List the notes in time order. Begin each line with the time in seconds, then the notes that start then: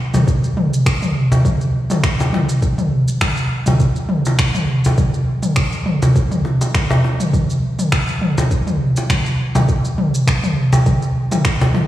0.14 cajon bass, mid tom, shaker
0.28 kick, shaker
0.44 shaker
0.57 mid tom
0.74 shaker
0.86 finger snap, kick, shaker
1.02 mid tom, shaker
1.32 cajon bass, shaker
1.45 kick, mid tom, shaker
1.61 shaker
1.90 cajon slap, mid tom, shaker
2.04 finger snap, kick, shaker
2.20 cajon bass, shaker
2.33 cajon slap, mid tom
2.49 shaker
2.63 kick, shaker
2.78 mid tom, shaker
3.08 shaker
3.21 finger snap, kick, mid tom, shaker
3.37 shaker
3.66 cajon bass, mid tom, shaker
3.80 kick, shaker
3.96 shaker
4.09 mid tom
4.25 cajon slap, shaker
4.39 finger snap, kick, shaker
4.55 mid tom, shaker
4.85 cajon bass, shaker
4.98 kick, mid tom, shaker
5.14 shaker
5.43 mid tom, shaker
5.56 finger snap, kick, shaker
5.73 shaker
5.86 mid tom
6.02 cajon bass, shaker
6.16 kick, shaker
6.31 mid tom, shaker
6.45 cajon slap
6.61 cajon slap, shaker
6.75 finger snap, kick, mid tom, shaker
6.90 cajon bass, shaker
7.04 cajon slap
7.20 mid tom, shaker
7.33 kick, mid tom, shaker
7.50 shaker
7.79 mid tom, shaker
7.92 finger snap, kick, shaker
8.09 shaker
8.21 mid tom
8.38 cajon bass, shaker
8.51 kick, shaker
8.67 mid tom, shaker
8.96 cajon slap, shaker
9.10 finger snap, kick, mid tom, shaker
9.26 shaker
9.55 cajon bass, mid tom, shaker
9.69 kick, shaker
9.85 shaker
9.98 mid tom
10.15 shaker
10.27 finger snap, kick, shaker
10.44 mid tom, shaker
10.73 cajon bass, shaker
10.86 kick, mid tom, shaker
11.02 shaker
11.32 cajon slap, mid tom, shaker
11.45 finger snap, kick, shaker
11.61 cajon bass, shaker
11.74 cajon slap, mid tom